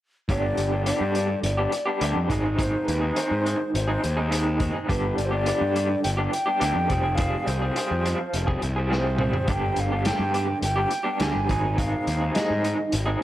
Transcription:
0.29 G1 G2 D3 G3 B3 D4 G4 D5, kick, closed hi-hat
0.57 G1, closed hi-hat
0.72 G3 B3 D4 G4
0.85 G2 D3 G3 B3 D4 G4 D5, closed hi-hat
1.01 G2
1.15 G3 B3 D4 G4, closed hi-hat
1.29 muted clean electric guitar stroke
1.43 G1 D5, closed hi-hat
1.57 G3 B3 D4 G4
1.72 muted clean electric guitar stroke, closed hi-hat
1.86 G3 B3 D4 G4
2.00 D2 G2 D3 G3 B3 D4 G4, closed hi-hat
2.16 F2
2.29 G#1 G#2 D#3 G#3 C4 D#4 G#4, kick, closed hi-hat
2.44 G#3 C4 D#4 G#4
2.57 G#2 D#3 G#3 C4 D#4 G#4 C5, kick, closed hi-hat
2.85 D#2 B4, closed hi-hat
3.01 G#3 C4 D#4 G#4
3.15 G#2 D#3 G#3 C4 D#4 G#4 C5, closed hi-hat
3.31 G#2
3.44 G#3 C4 D#4 G#4, closed hi-hat
3.59 muted clean electric guitar stroke
3.74 G#1 C5, closed hi-hat
3.88 G#3 C4 D#4 G#4
4.02 D#2, muted clean electric guitar stroke, closed hi-hat
4.17 G#3 C4 D#4 G#4
4.30 G#2 D#3 G#3 C4 D#4 G#4, closed hi-hat
4.59 G#3 C4 D#4 G#4, kick, closed hi-hat
4.73 G#3 C4 D#4 G#4
4.87 G1 G2 D3 G3 B3 D4 G4 B4, kick, closed hi-hat
5.16 G1 D5, closed hi-hat
5.26 C5
5.31 G3 B3 D4 G4 D5
5.45 G2 D3 G3 B3 D4 G4, closed hi-hat
5.61 G2
5.74 G3 B3 D4 G4, closed hi-hat
5.89 muted clean electric guitar stroke
6.03 G1 G5, closed hi-hat
6.17 G3 B3 D4 G4
6.31 G5, muted clean electric guitar stroke, closed hi-hat
6.46 G3 B3 D4 G4
6.59 D2 G2 D3 G3 B3 D4 G4, closed hi-hat
6.75 F2
6.89 F1 F3 G3 C4 G#4, kick, closed hi-hat
7.03 G3 C4 G#4
7.15 F3 G3 F5, kick, closed hi-hat
7.19 C4 G#4
7.47 C2 C5, closed hi-hat
7.62 G3 C4 G#4
7.76 F3 G3 C4 G#4, closed hi-hat
7.91 F2
8.04 F3 G3 C4 G#4, closed hi-hat
8.19 muted clean electric guitar stroke
8.34 F1, closed hi-hat
8.47 G3 C4 G#4, kick
8.62 C2, muted clean electric guitar stroke, closed hi-hat
8.76 G3 C4 G#4
8.90 F3 G3 C4 G#4 C5, snare
9.18 F3 G3 C4 G#4, mid tom
9.33 G3 C4 G#4, floor tom
9.47 G1 G2 D3 G3 B3 D4 G4 G5, kick, closed hi-hat
9.76 G1 F5, closed hi-hat
9.92 G3 B3 D4 G4
10.05 G2 D3 G3 B3 D4 G4 G5, snare, closed hi-hat
10.20 G2
10.33 G3 B3 D4 G4, closed hi-hat
10.48 muted clean electric guitar stroke
10.62 G1 G5, closed hi-hat
10.76 G3 B3 D4 G4
10.90 muted clean electric guitar stroke, closed hi-hat
11.03 G3 B3 D4 G4
11.20 D2 G2 D3 G3 B3 D4 G4 G#5, snare, closed hi-hat
11.35 G1
11.49 G#1 G#2 D#3 G#3 C4 D#4 G#4, kick, closed hi-hat
11.63 G#3 C4 D#4 G#4
11.77 G#2 D#3 G#3 C4 D#4 G#4 F5, kick, closed hi-hat
12.07 D#2, closed hi-hat
12.20 G#3 C4 D#4 G#4
12.35 G#2 D#3 G#3 C4 D#4 G#4 D#5, snare, closed hi-hat
12.51 G#2
12.64 G#3 C4 D#4 G#4, closed hi-hat
12.78 muted clean electric guitar stroke
12.92 G#1, closed hi-hat
13.06 G#3 C4 D#4 G#4

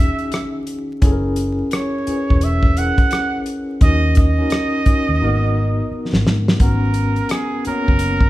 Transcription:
Already playing: D#3 C#4 D#4 F#4 G#4 E5
0.19 closed hi-hat
0.32 cross-stick, closed hi-hat
0.67 closed hi-hat
1.02 F#1 C#4 E4 G#4 A4, kick, closed hi-hat
1.12 A#4
1.36 closed hi-hat
1.71 C#5, cross-stick, closed hi-hat
2.07 C#4 E4 G#4 B4, muted fingered electric bass stroke, closed hi-hat
2.17 C#5
2.30 E1, kick
2.41 E5, closed hi-hat
2.63 kick
2.77 C#4 E4 G#4 A#4 F#5, closed hi-hat
2.98 kick, closed hi-hat
3.11 cross-stick, closed hi-hat
3.46 closed hi-hat
3.81 D#2 C#4 D#4 F#4 D#5, kick, closed hi-hat
3.85 A#4
4.15 D#5, kick, closed hi-hat
4.38 C#4 D#4 F#4 A#4
4.50 cross-stick, closed hi-hat
4.86 C#4 D#4 F#4, muted fingered electric bass stroke, kick, closed hi-hat
4.90 A#4
5.09 D#2
5.21 G#1 A#3 D#4 F#4 A#4
5.27 B3
5.91 muted fingered electric bass stroke
6.13 G#1, snare
6.26 G#2, snare
6.48 snare
6.60 G#1 B3 C#4 F#4 A#4, kick, closed hi-hat
6.64 A#4
6.94 closed hi-hat
7.16 closed hi-hat
7.29 G#4, cross-stick, closed hi-hat
7.65 A#3 C#4 F#4 A#4, muted fingered electric bass stroke, closed hi-hat
7.69 B3 C#5
7.88 F#1, kick
7.99 closed hi-hat
8.20 kick

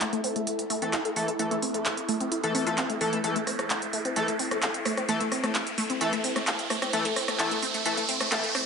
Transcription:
Already playing: E4 A4 E5, riser
0.01 A3, clap, closed hi-hat
0.13 A3, closed hi-hat
0.24 C4, open hi-hat
0.36 A3, closed hi-hat
0.47 closed hi-hat
0.59 closed hi-hat
0.70 A3, open hi-hat
0.82 E3 A3 C4 A4, closed hi-hat
0.93 E4, clap, closed hi-hat
1.05 A4, closed hi-hat
1.16 E3 A3 A4, open hi-hat
1.28 A3, closed hi-hat
1.39 E3 A3 A4, closed hi-hat
1.51 A3, closed hi-hat
1.62 C4, open hi-hat
1.74 A3, closed hi-hat
1.86 clap, closed hi-hat
1.97 closed hi-hat
2.09 A3, open hi-hat
2.21 C4, closed hi-hat
2.32 E4, closed hi-hat
2.44 E3 A3 A4, closed hi-hat
2.55 E3 A3 C4 A4, open hi-hat
2.67 E3 A3 F4 A4, closed hi-hat
2.78 C4, clap, closed hi-hat
2.90 A3, closed hi-hat
3.01 E3 A3 A4, open hi-hat
3.13 A3, closed hi-hat
3.24 E3 A3 A4, closed hi-hat
3.36 A3, closed hi-hat
3.47 C4, cross-stick, open hi-hat
3.59 A3, cross-stick, closed hi-hat
3.70 clap, closed hi-hat
3.82 closed hi-hat
3.93 A3, open hi-hat
4.05 C4, closed hi-hat
4.16 E3 A3 A4, closed hi-hat
4.28 A3, closed hi-hat
4.39 C4, open hi-hat
4.51 A3, cross-stick, closed hi-hat
4.62 clap, closed hi-hat
4.74 closed hi-hat
4.85 A3, cross-stick, open hi-hat
4.97 C4, cross-stick, closed hi-hat
5.09 E3 A3 A4, closed hi-hat
5.20 A3, closed hi-hat
5.32 C4, cross-stick, open hi-hat
5.44 A3, cross-stick, closed hi-hat
5.55 clap, closed hi-hat
5.67 closed hi-hat
5.78 A3, open hi-hat
5.90 C4, closed hi-hat
6.01 E3 A3 A4, closed hi-hat
6.13 A3, closed hi-hat
6.24 C4, open hi-hat
6.36 A3, cross-stick, closed hi-hat
6.47 clap, closed hi-hat
6.59 closed hi-hat
6.70 A3, cross-stick, open hi-hat
6.82 C4, cross-stick, closed hi-hat
6.93 E3 A3 A4, closed hi-hat
7.05 A3, closed hi-hat
7.16 C4, cross-stick, open hi-hat
7.28 A3, cross-stick, closed hi-hat
7.39 E3 A3 A4, clap, closed hi-hat
7.51 A3, closed hi-hat
7.62 C4, open hi-hat
7.74 A3, closed hi-hat
7.86 E3 A3 A4, closed hi-hat
7.97 A3, closed hi-hat
8.09 C4, open hi-hat
8.20 A3, cross-stick, closed hi-hat
8.32 E3 A3 A4, clap, closed hi-hat
8.43 A3, closed hi-hat
8.55 C4, cross-stick, open hi-hat

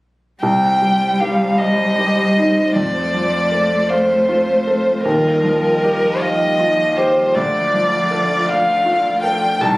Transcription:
0.42 C2 G3 G4 C5 G5
0.82 G3
1.20 G4 F5
1.58 D#5
1.98 G4
2.37 D#4
2.75 F2 A3 F4 D5
3.14 F3
3.52 A4
3.89 C5 F5
4.29 F4
4.67 A4
5.04 D#2 F3 G3 A#4 D#5
5.43 F3
5.83 G4
6.21 D#5 F5
6.60 F4
6.97 G4 C5
7.34 D2 A3 F4 D5
7.73 F3
8.11 A4
8.49 F5
8.86 F4
9.22 A4 G5
9.61 C2 D#3 G3 D#4 C5 A5

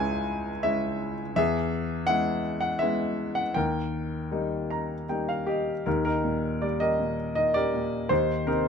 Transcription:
Already playing: C#2 G#3 C#4 E4 E5 G#5 A#5
0.63 G#3 C#4 E4 E5
1.36 E2 G#4 E5
2.07 G#3 B3 E4 F#5
2.61 F#5
2.79 G#3 B3 E4 E5
3.35 F#5
3.54 D#2 A#4 G5
4.31 G3 A#3 D#4
4.70 A#5
5.09 G3 A#3 D#4 G5
5.29 F5
5.47 G4 D#5
5.86 D#2 D#4 G4 A#4
6.05 D#4 G4 A#4
6.24 A#2
6.62 G3 D5
6.80 G4 A#4 D#5
7.00 A#2
7.35 D#3 D#5
7.54 G4 A#4 D5
7.74 A#2
8.09 D#2 D#4 G4 C5
8.46 C3 D#4 G4 A#4

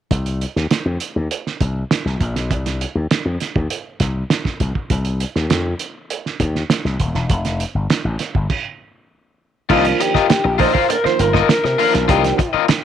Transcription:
0.11 C2, kick, closed hi-hat
0.26 closed hi-hat
0.41 closed hi-hat
0.56 D#2, snare
0.71 snare, closed hi-hat
0.85 F2
1.00 closed hi-hat
1.16 D#2
1.31 closed hi-hat
1.47 snare
1.60 C2, kick, closed hi-hat
1.91 snare, closed hi-hat
2.05 C2, snare
2.20 A#1, kick, closed hi-hat
2.35 B1, snare, closed hi-hat
2.51 C2, kick, closed hi-hat
2.66 snare, closed hi-hat
2.81 closed hi-hat
2.95 D#2
3.11 snare, closed hi-hat
3.25 F2
3.40 snare, closed hi-hat
3.56 D#2, kick
3.70 closed hi-hat
4.00 C2, kick, snare, closed hi-hat
4.30 snare, closed hi-hat
4.45 muted slap bass stroke, kick, snare
4.60 C2, kick, closed hi-hat
4.75 kick
4.90 C2, kick, closed hi-hat
5.05 closed hi-hat
5.20 closed hi-hat
5.36 D#2, snare
5.50 F2, snare, closed hi-hat
5.79 closed hi-hat
6.10 closed hi-hat
6.26 snare
6.40 D#2, kick, closed hi-hat
6.55 snare
6.70 snare, closed hi-hat
6.85 C2, snare
7.00 D#1, kick, closed hi-hat
7.15 E1, snare
7.30 F1, kick, closed hi-hat
7.45 snare, closed hi-hat
7.60 closed hi-hat
7.75 G1
7.90 snare, closed hi-hat
8.05 A1
8.19 snare, closed hi-hat
8.35 G1, kick
8.50 kick, crash
9.69 C2 D#3 F3 A#3 D4 F4 A#4 D#5, kick, crash
9.85 closed hi-hat
10.00 G4, muted overdriven electric guitar stroke, closed hi-hat
10.15 F4 A#4 D#5, muted slap bass stroke, kick, snare
10.30 muted overdriven electric guitar stroke, muted slap bass stroke, snare, closed hi-hat
10.44 A#1, muted overdriven electric guitar stroke
10.58 D#3 F3 A#3 D4 F4 A#4 C5 D#5, kick, open hi-hat
10.74 F4 A#4 F5, kick
10.89 A#3 D4 A#4, muted overdriven electric guitar stroke, closed hi-hat
11.03 D#3 F3 A#3 F4 C5, muted overdriven electric guitar stroke, muted slap bass stroke, snare
11.19 G1 A#4, closed hi-hat
11.34 F4 A#4 D#5, kick, snare
11.49 A#4, snare, closed hi-hat
11.64 C3, muted overdriven electric guitar stroke, snare
11.78 D3 F3 A#3 D4 F4 A#4 F5, open hi-hat
11.85 D#3
11.93 B1, muted overdriven electric guitar stroke, snare, closed hi-hat
12.08 C2 F4 G4 A#4 D#5, kick, closed hi-hat
12.24 snare, closed hi-hat
12.38 muted overdriven electric guitar stroke, kick, closed hi-hat
12.53 F4 A#4 D#5, muted slap bass stroke
12.68 muted overdriven electric guitar stroke, muted slap bass stroke, snare, closed hi-hat

